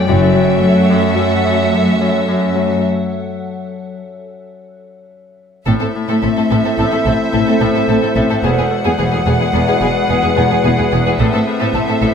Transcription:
Already playing: harp F#3
0.08 double bass section F#1, harp F#2, cello section F#2, viola section A3 F#4, ambient pad A4 E5 F#5, violin section E5
0.35 harp F#3
0.63 harp F#3
0.90 harp F#2
1.18 harp F#2
1.46 harp F#2
1.73 harp F#2
2.01 harp F#2
2.28 harp F#2
2.55 harp F#3
5.66 double bass section A1, harp A2, cello section A2, viola section C4, french horn section C4 E4, ambient pad A4 C5 E5, violin section A4 E5
5.81 cello section A2, viola section C4, violin section A4
5.95 harp A2
6.08 cello section A2, viola section C4, violin section A4
6.22 double bass section A1, cello section A2, harp A3, viola section C4, violin section A4
6.36 cello section A2, viola section C4, violin section A4
6.50 double bass section A1, harp A2, cello section A2, viola section C4, violin section A4
6.64 cello section A2, viola section C4, violin section A4
6.77 double bass section A1, harp A2, cello section A2, viola section C4, violin section A4
6.90 cello section A2, viola section C4, violin section A4
7.05 double bass section A1, cello section A2, harp A3, viola section C4, violin section A4
7.33 double bass section A1, cello section A2, harp A3, viola section C4, violin section A4
7.46 cello section A2, viola section C4, violin section A4
7.61 double bass section A1, harp A2, cello section A2, viola section C4, violin section A4
7.75 cello section A2, viola section C4, violin section A4
7.89 double bass section A1, cello section A2, harp A3, viola section C4, violin section A4
8.02 cello section A2, viola section C4, violin section A4
8.16 double bass section A1, harp A2, cello section A2, viola section C4, violin section A4
8.30 cello section A2, viola section C4, violin section A4
8.43 double bass section E1, harp E2, cello section E2, french horn section G#3 F#4, viola section B3, violin section G#4 F#5, ambient pad G#4 B4 F#5
8.58 cello section E2, viola section B3, violin section G#4
8.70 harp E2
8.85 cello section E2, viola section B3, violin section G#4
8.98 double bass section E1, cello section E2, harp E3, viola section B3, violin section G#4
9.12 cello section E2, viola section B3, violin section G#4
9.26 double bass section E1, harp E2, cello section E2, viola section B3, violin section G#4
9.41 cello section E2, viola section B3, violin section G#4
9.53 double bass section E1, harp E2, cello section E2, viola section B3, violin section G#4
9.68 cello section E2, viola section B3, violin section G#4
9.81 double bass section E1, cello section E2, harp E3, viola section B3, violin section G#4
10.09 double bass section E1, cello section E2, harp E3, viola section B3, violin section G#4
10.23 cello section E2, viola section B3, violin section G#4
10.36 double bass section E1, harp E2, cello section E2, viola section B3, violin section G#4
10.50 cello section E2, viola section B3, violin section G#4
10.64 double bass section E1, cello section E2, harp E3, viola section B3, violin section G#4
10.78 cello section E2, viola section B3, violin section G#4
10.91 double bass section E1, harp E2, cello section E2, viola section B3, violin section G#4
11.05 cello section E2, viola section B3, violin section G#4
11.19 double bass section A1, harp A2, cello section A2, viola section C4, french horn section C4 E4, ambient pad A4 C5 E5, violin section A4 E5
11.32 cello section A2, viola section C4, violin section A4
11.47 harp A2
11.59 cello section A2, viola section C4, violin section A4
11.73 double bass section A1, cello section A2, harp A3, viola section C4, violin section A4
11.87 cello section A2, viola section C4, violin section A4
12.01 double bass section A1, harp A2, cello section A2, viola section C4, violin section A4

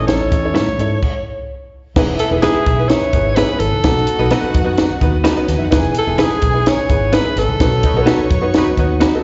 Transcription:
Already playing: upright piano A2 E4 A4 C#5, horn section E3 C#4 A4
0.07 fingered electric bass A1, alto saxophone C#5, snare, closed hi-hat
0.32 fingered electric bass E2, kick, closed hi-hat
0.45 upright piano E4 A4 C#5
0.54 fingered electric bass A2, clean electric guitar C#4 E4 A4 C#5, snare, closed hi-hat
0.79 fingered electric bass G#2, upright piano E4 A4 C#5, closed hi-hat
1.03 kick, crash
1.95 fingered electric bass E1, upright piano E3 B3 E4 G#4 B4, violin section E4 E5, kick, snare, crash
2.19 alto saxophone A4, closed hi-hat
2.31 fingered electric bass E1, upright piano B3 E4 G#4 B4
2.42 clean electric guitar B3 E4 G#4 B4, alto saxophone G#4, snare, closed hi-hat
2.55 muted fingered electric bass stroke
2.66 fingered electric bass B1, kick, closed hi-hat
2.79 upright piano B3 E4 G#4 B4
2.89 alto saxophone C#5, snare, closed hi-hat
3.02 muted fingered electric bass stroke
3.13 fingered electric bass G#1, upright piano B3 E4 G#4 B4, kick, closed hi-hat
3.35 clean electric guitar B3 E4 G#4 B4, alto saxophone B4, snare, closed hi-hat
3.48 upright piano B3 E4 G#4 B4
3.60 fingered electric bass G#1, alto saxophone A4, closed hi-hat
3.73 fingered electric bass C2
3.84 fingered electric bass B1, upright piano B2 B3 D#4 F#4 B4, violin section F#4 F#5, kick, snare, closed hi-hat
4.07 closed hi-hat
4.19 fingered electric bass B1, upright piano B3 D#4 F#4 B4
4.31 clean electric guitar B3 D#4 F#4 B4, snare, closed hi-hat
4.43 muted fingered electric bass stroke
4.54 fingered electric bass F#2, kick, closed hi-hat
4.64 upright piano B3 D#4 F#4 B4
4.78 snare, closed hi-hat
4.90 muted fingered electric bass stroke
5.01 fingered electric bass D#2, upright piano B3 D#4 F#4 B4, kick, closed hi-hat
5.24 clean electric guitar B3 D#4 F#4 B4, violin section A4, snare, closed hi-hat
5.28 violin section A3
5.34 violin section B3 B4, upright piano B3 D#4 F#4 B4
5.41 violin section C#4 C#5
5.48 fingered electric bass D#2, violin section D#4 D#5, snare, closed hi-hat
5.57 fingered electric bass F2, violin section E4 E5
5.64 violin section F#4 F#5
5.71 fingered electric bass E1, upright piano E3 B3 E4 G#4 B4, violin section G#4 G#5, kick, snare, closed hi-hat
5.95 closed hi-hat
5.99 alto saxophone A4
6.07 fingered electric bass E1, upright piano B3 E4 G#4 B4
6.18 clean electric guitar B3 E4 G#4 B4, snare, closed hi-hat
6.23 alto saxophone G#4
6.30 muted fingered electric bass stroke
6.42 fingered electric bass B1, kick, closed hi-hat
6.54 upright piano B3 E4 G#4 B4
6.66 alto saxophone C#5, snare, closed hi-hat
6.77 muted fingered electric bass stroke
6.89 fingered electric bass G#1, upright piano B3 E4 G#4 B4, kick, closed hi-hat
7.13 clean electric guitar B3 E4 G#4 B4, alto saxophone B4, snare, closed hi-hat
7.25 upright piano B3 E4 G#4 B4
7.36 fingered electric bass G#1, alto saxophone A4, snare, closed hi-hat
7.49 fingered electric bass C2
7.60 fingered electric bass B1, upright piano B2 B3 D#4 F#4 B4, violin section C#5 C#6, kick, snare, closed hi-hat
7.83 horn section F#3 D#4 B4, kick, closed hi-hat
7.94 fingered electric bass B1, upright piano B3 D#4 F#4 A#4
8.02 clean electric guitar B3, upright piano B4
8.07 clean electric guitar D#4 F#4 B4, snare, closed hi-hat
8.19 muted fingered electric bass stroke
8.30 fingered electric bass F#2, kick, closed hi-hat
8.41 upright piano B3 D#4 F#4 B4
8.54 horn section F#3 D#4 B4, snare, closed hi-hat
8.66 muted fingered electric bass stroke
8.77 fingered electric bass D#2, upright piano B3 D#4 F#4 B4, kick, closed hi-hat
9.00 clean electric guitar B3 D#4 F#4 B4, violin section C#4 C#5, snare, closed hi-hat
9.10 violin section D#4 D#5
9.14 upright piano B3 D#4 F#4 A4, violin section E4 E5

